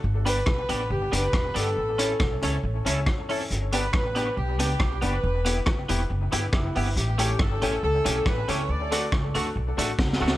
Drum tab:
HH |---x-----x-----x-----x--|---x-----x-----x-----o--|p--x-----x-----x-----x--|---x-----x-----x-----o--|
SD |------r-----------r-----|------r-----------r-----|------r-----------r-----|------r-----------r-----|
BD |------o-----------o-----|------o-----------o-----|------o-----------o-----|------o-----------o-----|

HH |p--x-----x-----x-----x--|---x-----x-----x--------|
SD |------r-----------r-----|------r-----------o-o-o-|
BD |------o-----------o-----|------o-----------o-----|